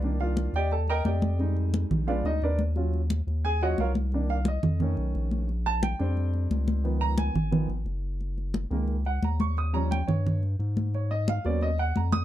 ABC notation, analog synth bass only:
X:1
M:4/4
L:1/8
Q:1/4=176
K:Bb
V:1 name="Analog synth bass" clef=bass
C,,3 E,,3 F,,2- | F,,3 B,,,2 D,, E,,2- | E,,3 E,,3 C,,2- | C,,3 F,,2 _C,, B,,,2- |
B,,,3 F,,3 _D,,2- | _D,,3 _A,,,2 A,,, _G,,,2- | [K:F#] _G,,,3 C,,3 D,,2- | D,,3 =G,,3 ^G,,2- |
G,,3 D,,3 E,,2 |]